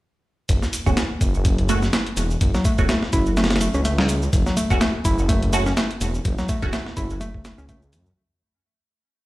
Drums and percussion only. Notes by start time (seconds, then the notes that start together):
0.49 kick, closed hi-hat, shaker
0.62 snare, shaker
0.73 closed hi-hat, shaker
0.86 kick, shaker
0.97 snare, closed hi-hat, shaker
1.21 kick, closed hi-hat, shaker
1.34 shaker
1.45 kick, closed hi-hat, shaker
1.58 closed hi-hat
1.69 closed hi-hat, shaker
1.82 snare, shaker
1.93 snare, closed hi-hat, shaker
2.07 closed hi-hat
2.17 closed hi-hat, shaker
2.30 shaker
2.41 kick, closed hi-hat, shaker
2.54 snare, shaker
2.65 kick, closed hi-hat, shaker
2.78 kick, shaker
2.89 snare, closed hi-hat, shaker
3.03 snare
3.13 kick, closed hi-hat, shaker
3.26 shaker
3.37 snare, closed hi-hat, shaker
3.44 snare, closed hi-hat
3.50 snare, closed hi-hat
3.56 snare, closed hi-hat
3.61 closed hi-hat, shaker
3.74 shaker
3.85 closed hi-hat, shaker
3.98 snare
4.09 closed hi-hat, shaker
4.22 shaker
4.33 kick, closed hi-hat, shaker
4.46 snare, shaker
4.57 closed hi-hat, shaker
4.70 kick, shaker
4.81 snare, closed hi-hat, shaker
5.05 kick, closed hi-hat, shaker
5.18 shaker
5.29 kick, closed hi-hat, shaker
5.43 closed hi-hat
5.53 closed hi-hat, shaker
5.66 snare, shaker
5.77 snare, closed hi-hat, shaker
5.91 closed hi-hat
6.01 closed hi-hat, shaker
6.14 shaker
6.25 kick, closed hi-hat, shaker
6.38 snare, shaker
6.49 kick, closed hi-hat, shaker
6.62 kick, shaker
6.73 snare, closed hi-hat, shaker
6.86 snare
6.97 kick, closed hi-hat, shaker
7.10 shaker
7.21 closed hi-hat, shaker
7.34 kick
7.45 snare, closed hi-hat, shaker
7.58 shaker
7.69 kick, closed hi-hat, shaker
7.82 shaker
7.93 closed hi-hat, shaker
8.06 shaker